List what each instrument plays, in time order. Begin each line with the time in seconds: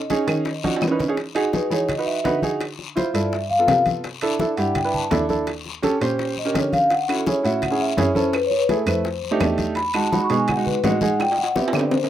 Already playing: cello B2, vibraphone D#5
0.10 grand piano C#4 D#4 G#4, high bongo, high conga, high timbale, low timbale, short guiro
0.28 cello D#3, high bongo, high conga, high timbale, short guiro, claves
0.45 high bongo, high conga, long guiro
0.64 grand piano C#4 D#4 F#4, high conga, high timbale
0.76 high timbale
0.81 cello E3, high bongo, low bongo, short guiro, claves
0.88 grand piano C#4 D#4, low timbale
0.92 grand piano B4
0.99 high bongo, low conga, low timbale, short guiro
1.08 grand piano C#4 D#4 G#4
1.17 high bongo, high conga, high timbale, long guiro
1.35 grand piano D#4 F#4 G#4, high conga, high timbale
1.53 grand piano D#4 F#4 G#4, vibraphone B4, high bongo, high conga, low timbale, short guiro
1.71 cello E3, grand piano D#4 F#4 G#4, vibraphone C#5, high timbale, short guiro
1.89 vibraphone D#5, high bongo, high conga, low conga, high timbale, long guiro
1.98 grand piano D#4 F#4 B4
2.06 vibraphone E5, high conga
2.24 cello D3, grand piano D#4 F#4 B4, high bongo, low bongo, high conga, high timbale, low timbale, short guiro
2.42 grand piano D#4 F#4 G#4, high conga, short guiro
2.60 high bongo, high conga, high timbale, long guiro
2.79 high bongo, high conga
2.96 grand piano E4 F4 C5, vibraphone C5, high bongo, high conga, high timbale, low timbale, short guiro
3.14 cello G2, grand piano E4 F4 A4, vibraphone D5, high bongo, high conga, high timbale, short guiro
3.32 vibraphone E5, high bongo, high conga, long guiro
3.50 vibraphone F5, high conga
3.59 grand piano B3 F4 A4
3.68 cello C3, high bongo, low bongo, high conga, high timbale, low timbale, short guiro
3.86 high bongo, high conga, high timbale, short guiro
4.04 high bongo, high conga, high timbale, long guiro
4.21 grand piano D4 E4 A4, high conga, high timbale
4.39 grand piano D4 E4 A4, vibraphone E5, high bongo, high conga, low timbale, short guiro
4.57 cello G2, grand piano D4 E4 G4, vibraphone F#5, high timbale, short guiro
4.75 vibraphone G5, high bongo, high conga, low conga, high timbale, long guiro
4.84 grand piano D4 E4 B4
4.94 vibraphone A5, high conga, low conga
5.11 cello D#2, grand piano D4 E4 A4, high bongo, low bongo, high conga, high timbale, low timbale, short guiro
5.29 grand piano D4 E4 A4, high conga, short guiro
5.47 high bongo, high conga, high timbale, long guiro
5.65 high bongo, high conga
5.82 grand piano C#4 G4 A4, high bongo, high conga, high timbale, low timbale, short guiro
6.01 cello A#2, grand piano C#4 G4 C5, high bongo, high conga, high timbale, short guiro
6.19 high bongo, high conga, long guiro
6.37 vibraphone D#5, high conga
6.45 grand piano C#4 G4 A#4
6.55 cello D3, vibraphone C#5, high bongo, low bongo, high conga, high timbale, low timbale, short guiro
6.73 vibraphone F5, high bongo, high conga, high timbale, short guiro
6.90 vibraphone F#5, high bongo, high conga, high timbale, long guiro
7.09 grand piano C#4 E4 F#4, vibraphone A4, high conga, high timbale, claves
7.26 grand piano C#4 E4 G#4, vibraphone C#5, high bongo, high conga, low timbale, short guiro
7.43 cello A2, grand piano C#4 E4 F#4, vibraphone E5, high timbale, short guiro
7.62 vibraphone F#5, high bongo, high conga, low conga, high timbale, long guiro, claves
7.71 grand piano C#4 E4 G#4
7.80 vibraphone E5, high conga
7.97 cello F#2, grand piano C#4 E4 G#4, vibraphone C#5, high bongo, low bongo, high conga, high timbale, low timbale, short guiro
8.15 grand piano C#4 E4 A4, vibraphone C5, high conga, short guiro
8.33 vibraphone B4, high bongo, high conga, high timbale, long guiro, claves
8.46 vibraphone C#5
8.50 high bongo, high conga
8.57 vibraphone B4
8.69 grand piano A3 E4 G#4, vibraphone A4, high bongo, high conga, high timbale, low timbale, short guiro
8.86 cello F2, grand piano A3 E4 B4, vibraphone C5, high bongo, high conga, high timbale, short guiro, claves
9.04 high bongo, high conga, long guiro
9.23 high conga
9.31 grand piano A3 D4 D#4 G4
9.40 cello E2, high bongo, low bongo, high conga, high timbale, low timbale, short guiro, claves
9.58 high bongo, high conga, high timbale, short guiro
9.75 vibraphone B5, high bongo, high conga, high timbale, long guiro
9.94 grand piano G#3 D#4 F#4, vibraphone A5, high conga, high timbale, claves
10.12 grand piano G#3 D#4 F#4, vibraphone B5, high bongo, high conga, low timbale, short guiro
10.24 vibraphone C#6
10.30 cello B2, grand piano G#3 D#4 G#4, high timbale, short guiro
10.37 vibraphone G#5
10.48 vibraphone F#5, high bongo, high conga, low conga, high timbale, long guiro, claves
10.57 grand piano G#3 D#4 F#4
10.65 vibraphone B4, high conga, low conga
10.84 cello A2, grand piano G#3 D#4 F#4, vibraphone D#5, high bongo, low bongo, high conga, high timbale, low timbale, short guiro
11.01 grand piano G#3 D#4 G#4, vibraphone F#5, high conga, short guiro
11.20 vibraphone G5, high bongo, high conga, high timbale, long guiro, claves
11.32 high timbale
11.38 vibraphone F#5, high bongo, high conga
11.44 high timbale
11.56 grand piano B3 C4 G4, vibraphone E5, high bongo, high conga, short guiro
11.68 high timbale
11.73 cello D3, grand piano B3 C4 G4, vibraphone D5, high bongo, high conga, short guiro, claves
11.79 low timbale
11.91 vibraphone C5, low bongo, high conga, low timbale, long guiro
12.04 low timbale